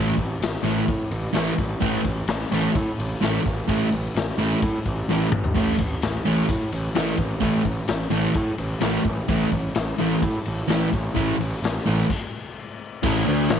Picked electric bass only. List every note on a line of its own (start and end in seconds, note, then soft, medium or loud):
0.18 0.33 A1 medium
0.40 0.55 A1 medium
0.64 0.79 A1 medium
0.89 1.03 A2 loud
1.11 1.26 A1 medium
1.34 1.49 A1 medium
1.59 1.73 A1 medium
1.82 1.97 A1 loud
2.06 2.20 A1 medium
2.28 2.43 A1 loud
2.52 2.67 A1 medium
2.75 2.90 A2 medium
2.99 3.14 A1 medium
3.23 3.37 A1 medium
3.47 3.61 A1 loud
3.69 3.84 A1 loud
3.92 4.07 A1 medium
4.15 4.30 A1 loud
4.38 4.53 A1 medium
4.63 4.78 A2 loud
4.86 5.01 A1 medium
5.09 5.24 A1 medium
5.33 5.48 A1 medium
5.56 5.71 A1 medium
5.79 5.94 A1 medium
6.03 6.18 A1 medium
6.27 6.41 A1 medium
6.49 6.64 A2 medium
6.73 6.88 A1 medium
6.96 7.11 A1 medium
7.18 7.34 A1 medium
7.41 7.57 A1 loud
7.65 7.80 A1 medium
7.89 8.04 A1 loud
8.10 8.26 A1 medium
8.36 8.51 A2 loud
8.58 8.73 A1 medium
8.82 8.97 A1 medium
9.05 9.20 A1 medium
9.29 9.44 A1 medium
9.52 9.67 A1 loud
9.76 9.91 A1 loud
10.00 10.14 A1 medium
10.23 10.37 A2 loud
10.47 10.61 A1 medium
10.69 10.84 A1 medium
10.93 11.08 A1 loud
11.16 11.31 A1 medium
11.39 11.54 A1 medium
11.62 11.77 A1 medium
11.88 12.02 A1 medium
13.04 13.25 A1 loud
13.27 13.48 D2 loud
13.51 13.60 A1 medium